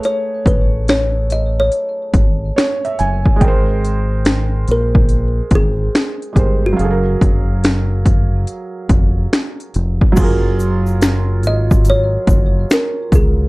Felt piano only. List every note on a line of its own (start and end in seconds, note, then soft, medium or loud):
0.00 2.92 A3 medium
0.00 2.94 G#4 medium
0.00 2.96 B4 medium
0.00 2.55 C#5 medium
2.56 2.82 C#5 medium
2.85 2.98 E5 medium
2.99 3.38 G#5 medium
3.36 6.30 G#3 medium
3.40 6.34 A#4 medium
3.40 6.33 G5 medium
3.48 6.36 C5 medium
6.33 6.77 G#3 soft
6.33 6.78 G4 soft
6.37 6.79 A#4 soft
6.37 6.80 C5 medium
6.73 10.10 F#3 medium
6.73 10.12 F5 medium
6.81 10.14 G#4 medium
6.81 6.90 A4 medium
6.91 10.19 A#4 medium
10.12 13.49 F#3 medium
10.12 13.49 F4 medium
10.19 13.49 G#4 medium
10.23 13.49 A#4 medium